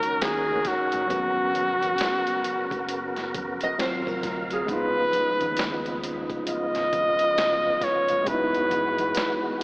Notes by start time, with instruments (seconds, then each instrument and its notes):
Already playing: fingered electric bass C#2, tonewheel organ D#3 C#4 F#4 A#4, tine electric piano F#3 G#3 A#3 C#4, flugelhorn A#4
0.03 closed hi-hat
0.21 fingered electric bass D#2, flugelhorn G#4, snare, clap, closed hi-hat, muted conga
0.49 low conga
0.65 flugelhorn F#4, kick, snare, closed hi-hat, muted conga
0.92 fingered electric bass A1, closed hi-hat
1.07 fingered electric bass G#1, tonewheel organ C#3 B3 F#4, tine electric piano F#3 B3, kick, closed hi-hat
1.11 tine electric piano C#4 F#4, muted conga, low conga
1.54 closed hi-hat, muted conga, high conga
1.82 closed hi-hat, high conga
1.98 snare, clap, closed hi-hat, muted conga
2.27 closed hi-hat
2.44 muted fingered electric bass stroke, closed hi-hat, muted conga
2.71 fingered electric bass F#1, kick, closed hi-hat, low conga
2.89 closed hi-hat
3.16 snare, closed hi-hat
3.34 kick, closed hi-hat, muted conga, high conga
3.61 nylon-string guitar D#5, closed hi-hat
3.78 fingered electric bass G#1, tonewheel organ C3 F#3 F5, tine electric piano F#3 C4 F4 F#4, nylon-string guitar C5, snare, clap, closed hi-hat, muted conga
4.07 nylon-string guitar A#4, kick, low conga
4.23 fingered electric bass D2, kick, snare, closed hi-hat, muted conga
4.51 nylon-string guitar G#4, closed hi-hat
4.66 fingered electric bass C#2, tonewheel organ C#3 F3 B3 D#4, tine electric piano G#3 B3, flugelhorn B4, kick, closed hi-hat, muted conga, low conga
4.71 tine electric piano D#4 F4
5.12 closed hi-hat, muted conga, high conga
5.41 fingered electric bass D#2, closed hi-hat, high conga
5.57 snare, clap, closed hi-hat, muted conga
5.86 closed hi-hat
6.04 closed hi-hat
6.30 kick, closed hi-hat, low conga
6.47 tonewheel organ F4, flugelhorn D#5, muted fingered electric bass stroke, closed hi-hat, muted conga
6.75 fingered electric bass G#1, snare, closed hi-hat
6.93 kick, closed hi-hat, muted conga, high conga
7.19 closed hi-hat
7.38 fingered electric bass C#2, snare, clap, closed hi-hat, muted conga
7.66 low conga
7.81 flugelhorn C#5, kick, snare, closed hi-hat, muted conga
8.08 fingered electric bass G1, closed hi-hat
8.24 fingered electric bass F#1, tonewheel organ E3 G#3 F#4, tine electric piano G#3 B3, flugelhorn B4, kick, closed hi-hat
8.28 tine electric piano D#4 E4, low conga
8.54 closed hi-hat
8.71 closed hi-hat, muted conga, high conga
8.98 closed hi-hat, high conga
9.15 snare, clap, closed hi-hat